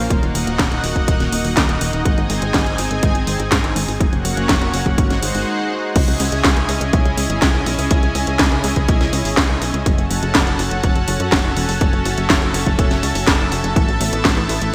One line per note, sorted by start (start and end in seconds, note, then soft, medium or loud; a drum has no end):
0.00 2.02 A#3 medium
0.10 0.21 D#1 loud
0.10 3.97 D#4 medium
0.10 2.04 F#4 medium
0.10 3.97 D#5 medium
0.10 2.04 F#5 medium
0.10 kick loud
0.10 closed hi-hat medium
0.22 0.33 D#1 medium
0.22 closed hi-hat soft
0.34 0.45 D#1 medium
0.34 open hi-hat loud
0.47 0.58 D#1 medium
0.47 closed hi-hat soft
0.59 0.70 D#1 loud
0.59 kick loud
0.59 snare loud
0.59 clap medium
0.59 closed hi-hat medium
0.71 0.82 D#1 medium
0.71 closed hi-hat soft
0.83 0.94 D#1 medium
0.83 open hi-hat loud
0.96 1.07 D#1 medium
0.96 kick medium
0.96 closed hi-hat soft
1.08 1.19 D#1 loud
1.08 kick loud
1.08 closed hi-hat medium
1.20 1.31 D#1 medium
1.20 snare soft
1.20 closed hi-hat soft
1.32 1.43 D#1 loud
1.32 open hi-hat loud
1.45 1.55 D#1 medium
1.45 open hi-hat medium
1.57 1.68 D#2 loud
1.57 kick loud
1.57 snare loud
1.57 clap medium
1.57 closed hi-hat medium
1.69 1.80 D#1 medium
1.69 closed hi-hat soft
1.81 1.92 D#1 medium
1.81 open hi-hat loud
1.93 2.04 D#1 medium
1.93 closed hi-hat soft
2.05 2.16 G#1 loud
2.05 3.99 C4 medium
2.05 3.99 G#4 medium
2.05 3.99 G#5 medium
2.05 kick loud
2.05 closed hi-hat medium
2.18 2.29 G#1 medium
2.18 closed hi-hat soft
2.30 2.41 G#1 loud
2.30 open hi-hat loud
2.42 2.53 G#1 medium
2.42 closed hi-hat soft
2.54 2.65 G#1 loud
2.54 kick loud
2.54 snare loud
2.54 clap medium
2.54 closed hi-hat medium
2.66 2.77 G#1 medium
2.66 closed hi-hat soft
2.78 2.89 G#1 medium
2.78 open hi-hat loud
2.91 3.02 G#1 medium
2.91 closed hi-hat soft
3.03 3.14 G#1 loud
3.03 kick loud
3.03 closed hi-hat medium
3.15 3.26 G#1 medium
3.15 closed hi-hat soft
3.27 3.38 G#1 medium
3.27 open hi-hat loud
3.39 3.50 G#1 medium
3.39 closed hi-hat soft
3.52 3.63 G#2 loud
3.52 kick loud
3.52 snare loud
3.52 clap loud
3.52 closed hi-hat medium
3.64 3.75 G#1 medium
3.64 closed hi-hat soft
3.76 3.87 G#1 medium
3.76 open hi-hat loud
3.88 3.99 G#1 medium
3.88 open hi-hat medium
4.00 4.11 F#1 loud
4.00 4.97 A#3 medium
4.00 4.97 C#4 medium
4.00 4.97 F#4 medium
4.00 4.97 C#5 medium
4.00 4.97 F#5 medium
4.00 kick loud
4.00 closed hi-hat medium
4.13 4.24 F#1 medium
4.13 closed hi-hat soft
4.25 4.36 F#1 medium
4.25 open hi-hat loud
4.37 4.48 F#1 medium
4.37 closed hi-hat soft
4.49 4.60 F#1 loud
4.49 kick loud
4.49 snare loud
4.49 clap loud
4.49 closed hi-hat medium
4.61 4.72 F#1 medium
4.61 closed hi-hat soft
4.74 4.85 F#1 medium
4.74 open hi-hat loud
4.86 4.97 F#1 medium
4.86 kick medium
4.86 closed hi-hat soft
4.98 5.09 G#1 loud
4.98 5.95 G#3 medium
4.98 5.95 D#4 medium
4.98 5.95 F#4 medium
4.98 5.95 C5 medium
4.98 5.95 F#5 medium
4.98 kick loud
4.98 closed hi-hat medium
5.10 5.21 G#1 medium
5.10 snare soft
5.10 closed hi-hat soft
5.22 5.33 G#1 medium
5.22 open hi-hat loud
5.35 5.46 G#1 medium
5.35 open hi-hat medium
5.96 6.07 C#2 loud
5.96 9.82 C#4 medium
5.96 9.82 E4 medium
5.96 9.82 G#4 medium
5.96 9.82 D#5 medium
5.96 9.82 G#5 medium
5.96 kick loud
5.96 closed hi-hat medium
5.96 crash loud
6.08 6.19 C#2 medium
6.08 closed hi-hat soft
6.20 6.31 C#2 loud
6.20 open hi-hat loud
6.32 6.43 C#2 medium
6.32 closed hi-hat medium
6.44 6.55 C#2 loud
6.44 kick loud
6.44 snare loud
6.44 clap loud
6.44 closed hi-hat medium
6.57 6.68 C#2 medium
6.57 closed hi-hat soft
6.69 6.80 C#2 loud
6.69 open hi-hat loud
6.81 6.92 C#2 medium
6.81 closed hi-hat medium
6.93 7.04 B1 loud
6.93 kick loud
6.93 closed hi-hat medium
7.05 7.16 C#2 medium
7.05 closed hi-hat soft
7.17 7.28 C#2 loud
7.17 open hi-hat loud
7.30 7.41 G#1 medium
7.30 closed hi-hat medium
7.42 7.53 C#2 loud
7.42 kick loud
7.42 snare loud
7.42 clap loud
7.42 closed hi-hat medium
7.54 7.65 C#2 medium
7.66 7.77 B1 loud
7.66 open hi-hat loud
7.78 7.89 C#2 medium
7.78 open hi-hat medium
7.91 8.02 C#2 loud
7.91 kick loud
7.91 closed hi-hat medium
8.03 8.14 C#2 medium
8.03 closed hi-hat soft
8.15 8.26 C#2 loud
8.15 open hi-hat loud
8.27 8.38 C#2 medium
8.27 closed hi-hat medium
8.39 8.50 C#2 loud
8.39 kick loud
8.39 snare loud
8.39 clap loud
8.39 closed hi-hat medium
8.52 8.63 C#2 medium
8.52 closed hi-hat soft
8.64 8.75 C#2 medium
8.64 open hi-hat loud
8.76 8.87 C#2 medium
8.76 kick medium
8.76 closed hi-hat medium
8.88 8.99 B1 loud
8.88 kick loud
8.88 closed hi-hat medium
9.01 9.11 C#2 medium
9.01 snare soft
9.01 closed hi-hat soft
9.13 9.24 C#2 loud
9.13 open hi-hat loud
9.25 9.36 G#1 medium
9.25 open hi-hat medium
9.37 9.48 C#2 loud
9.37 kick loud
9.37 snare loud
9.37 clap loud
9.37 closed hi-hat medium
9.49 9.60 C#2 medium
9.61 9.72 B1 loud
9.61 open hi-hat loud
9.74 9.85 C#2 medium
9.74 closed hi-hat medium
9.86 9.97 F#1 loud
9.86 13.73 C#4 medium
9.86 13.73 F#4 medium
9.86 14.75 A4 medium
9.86 11.79 F#5 medium
9.86 14.75 A5 medium
9.86 kick loud
9.86 closed hi-hat medium
9.98 10.09 F#1 medium
9.98 closed hi-hat soft
10.10 10.21 F#1 medium
10.10 open hi-hat loud
10.23 10.33 F#1 medium
10.23 closed hi-hat medium
10.35 10.46 F#1 loud
10.35 kick loud
10.35 snare loud
10.35 clap loud
10.35 closed hi-hat medium
10.47 10.58 F#1 medium
10.47 closed hi-hat soft
10.59 10.70 F#1 medium
10.59 open hi-hat loud
10.71 10.82 F#1 medium
10.71 closed hi-hat medium
10.83 10.94 E1 loud
10.83 kick loud
10.83 closed hi-hat medium
10.96 11.06 F#1 medium
10.96 closed hi-hat soft
11.08 11.19 F#1 loud
11.08 open hi-hat loud
11.20 11.31 F#2 medium
11.20 closed hi-hat soft
11.32 11.43 F#1 loud
11.32 kick loud
11.32 snare loud
11.32 clap loud
11.32 closed hi-hat medium
11.44 11.55 F#1 medium
11.57 11.67 E1 medium
11.57 open hi-hat loud
11.69 11.80 F#1 medium
11.69 open hi-hat medium
11.81 11.92 F#1 loud
11.81 14.75 E5 medium
11.81 kick loud
11.81 closed hi-hat medium
11.93 12.04 F#1 medium
11.93 closed hi-hat soft
12.05 12.16 F#1 loud
12.05 open hi-hat loud
12.18 12.29 F#1 medium
12.18 closed hi-hat medium
12.30 12.41 F#1 loud
12.30 kick loud
12.30 snare loud
12.30 clap loud
12.30 closed hi-hat medium
12.42 12.53 F#1 medium
12.42 closed hi-hat soft
12.54 12.65 F#1 loud
12.54 open hi-hat loud
12.66 12.77 F#1 medium
12.66 kick medium
12.66 closed hi-hat medium
12.79 12.89 E1 loud
12.79 kick loud
12.79 closed hi-hat medium
12.91 13.02 F#1 medium
12.91 snare soft
12.91 closed hi-hat soft
13.03 13.14 C#2 medium
13.03 open hi-hat loud
13.15 13.26 F#1 medium
13.15 open hi-hat medium
13.27 13.38 F#1 loud
13.27 kick loud
13.27 snare loud
13.27 clap loud
13.27 closed hi-hat medium
13.40 13.51 F#1 medium
13.52 13.63 F#1 medium
13.52 open hi-hat loud
13.64 13.75 F#1 medium
13.64 closed hi-hat soft
13.76 13.87 A1 loud
13.76 14.75 B3 medium
13.76 14.75 E4 medium
13.76 kick loud
13.76 closed hi-hat medium
13.88 13.99 A1 medium
13.88 closed hi-hat soft
14.00 14.11 A1 loud
14.00 open hi-hat loud
14.13 14.24 A1 medium
14.13 closed hi-hat medium
14.25 14.36 A1 loud
14.25 kick loud
14.25 snare loud
14.25 clap loud
14.25 closed hi-hat medium
14.37 14.48 A1 medium
14.37 closed hi-hat soft
14.49 14.60 A1 loud
14.49 open hi-hat loud
14.61 14.72 A1 medium
14.61 closed hi-hat medium